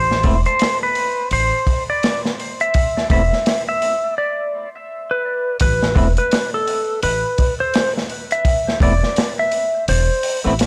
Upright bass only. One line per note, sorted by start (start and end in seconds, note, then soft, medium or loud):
0.00 0.20 A1 medium
0.24 0.43 E1 loud
1.31 1.50 A1 medium
3.10 3.29 E1 loud
5.61 5.93 A1 medium
5.96 6.14 E1 loud
7.03 7.22 A1 medium
8.81 9.00 E1 loud
9.88 10.07 E1 loud
10.46 10.66 A1 medium